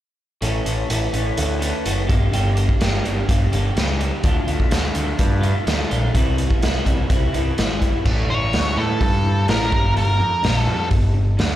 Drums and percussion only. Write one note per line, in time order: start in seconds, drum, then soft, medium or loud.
0.42 closed hi-hat medium
0.66 closed hi-hat medium
0.90 closed hi-hat medium
1.14 closed hi-hat medium
1.37 closed hi-hat medium
1.62 closed hi-hat medium
1.86 closed hi-hat medium
2.10 kick medium
2.10 closed hi-hat medium
2.33 closed hi-hat medium
2.57 closed hi-hat soft
2.69 kick medium
2.81 snare medium
2.81 closed hi-hat medium
3.05 closed hi-hat soft
3.29 kick medium
3.29 closed hi-hat medium
3.53 closed hi-hat soft
3.77 snare medium
3.77 closed hi-hat medium
4.01 closed hi-hat soft
4.23 kick loud
4.23 closed hi-hat medium
4.48 closed hi-hat soft
4.60 kick medium
4.71 snare loud
4.71 closed hi-hat medium
4.95 closed hi-hat medium
5.19 kick medium
5.19 closed hi-hat medium
5.43 closed hi-hat soft
5.67 snare medium
5.67 closed hi-hat medium
5.91 closed hi-hat soft
6.15 kick medium
6.15 closed hi-hat medium
6.38 closed hi-hat medium
6.50 kick medium
6.62 snare loud
6.62 closed hi-hat medium
6.86 kick medium
6.86 closed hi-hat medium
7.10 kick medium
7.10 closed hi-hat medium
7.34 closed hi-hat soft
7.58 snare medium
7.58 closed hi-hat medium
7.82 kick medium
7.82 closed hi-hat soft
8.05 kick loud
8.05 crash medium
8.53 snare medium
8.53 open hi-hat soft
9.01 kick medium
9.01 open hi-hat soft
9.48 snare loud
9.48 open hi-hat soft
9.72 kick medium
9.97 open hi-hat soft
10.44 snare medium
10.44 open hi-hat soft
10.91 kick medium
10.91 open hi-hat soft
11.39 snare medium
11.39 open hi-hat soft